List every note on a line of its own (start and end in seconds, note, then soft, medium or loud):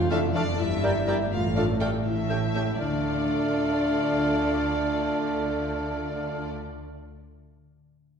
0.00 0.47 F1 medium
0.00 0.47 F2 medium
0.00 0.61 F2 medium
0.00 0.61 A3 soft
0.00 0.10 F4 medium
0.00 0.34 A4 soft
0.10 0.20 A3 medium
0.10 0.18 D4 soft
0.10 1.06 D4 medium
0.10 0.21 E4 medium
0.10 0.18 A4 medium
0.10 0.20 D5 soft
0.10 0.19 E5 medium
0.10 0.20 F5 medium
0.10 0.19 F5 medium
0.10 0.17 A5 medium
0.34 0.44 A3 medium
0.34 0.45 D4 medium
0.34 0.43 D4 medium
0.34 0.61 F4 soft
0.34 0.43 A4 medium
0.34 0.62 A4 medium
0.34 0.44 D5 soft
0.34 0.59 D5 medium
0.34 0.44 F5 medium
0.34 0.43 F5 soft
0.34 0.41 A5 medium
0.58 1.20 G1 medium
0.58 1.34 G2 medium
0.58 1.20 G2 medium
0.58 1.06 E4 medium
0.58 1.06 E5 medium
0.83 0.92 G3 medium
0.83 1.34 A#3 soft
0.83 0.91 E4 soft
0.83 0.91 A#4 soft
0.83 0.91 D5 soft
0.83 0.92 D5 soft
0.83 0.93 G5 soft
0.83 0.89 A#5 soft
1.07 1.16 G3 soft
1.07 1.80 D4 soft
1.07 1.15 E4 medium
1.07 1.19 E4 medium
1.07 1.34 G4 soft
1.07 1.15 A#4 medium
1.07 1.16 D5 medium
1.07 1.16 D5 soft
1.07 1.15 E5 medium
1.07 1.17 G5 soft
1.07 1.14 A#5 soft
1.32 1.93 A1 medium
1.32 1.93 A2 medium
1.32 2.04 A2 soft
1.32 1.44 F4 medium
1.32 1.55 F5 medium
1.56 1.65 A3 soft
1.56 2.29 A3 soft
1.56 1.65 D4 soft
1.56 1.67 F4 medium
1.56 1.65 A4 medium
1.56 1.64 D5 soft
1.56 1.65 D5 soft
1.56 1.64 F5 medium
1.56 1.66 F5 soft
1.56 1.62 A5 soft
1.80 1.89 A3 soft
1.80 2.07 D4 soft
1.80 1.89 D4 soft
1.80 2.08 F4 soft
1.80 2.06 G4 medium
1.80 1.89 A4 soft
1.80 1.89 D5 soft
1.80 1.90 F5 soft
1.80 1.88 G5 medium
1.80 1.86 A5 soft
2.05 2.67 A1 soft
2.05 2.81 A2 soft
2.05 2.67 A2 medium
2.05 2.78 E4 medium
2.05 2.78 E5 soft
2.30 2.39 A3 soft
2.30 2.85 A3 soft
2.30 2.38 C#4 soft
2.30 2.38 G4 soft
2.30 2.39 C#5 soft
2.30 2.38 E5 soft
2.30 2.39 G5 soft
2.30 2.36 A5 soft
2.54 2.64 A3 soft
2.54 2.82 C#4 soft
2.54 2.63 C#4 soft
2.54 2.63 G4 soft
2.54 2.82 G4 soft
2.54 2.63 C#5 soft
2.54 2.62 E5 soft
2.54 2.64 G5 soft
2.54 2.60 A5 soft
2.78 6.49 D2 soft
2.78 6.49 D3 soft
2.78 7.17 D3 soft
2.78 6.49 A3 soft
2.78 6.49 D4 medium
2.78 6.49 F4 medium
2.78 6.49 A4 medium
2.78 6.48 D5 soft
2.78 6.49 D5 soft
2.78 6.49 F5 medium
2.78 6.48 A5 soft
2.87 7.22 A3 soft
2.94 7.26 D4 soft
3.01 7.30 F4 soft
3.08 7.33 D5 soft